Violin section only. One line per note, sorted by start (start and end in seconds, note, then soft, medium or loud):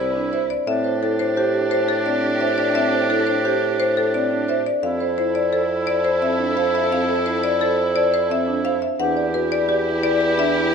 0.00 0.46 E4 medium
0.00 0.46 B4 medium
0.68 4.62 D4 medium
0.68 4.62 G4 medium
4.83 8.78 E4 medium
4.83 8.78 A4 medium
8.99 10.75 E4 medium
8.99 10.75 G4 medium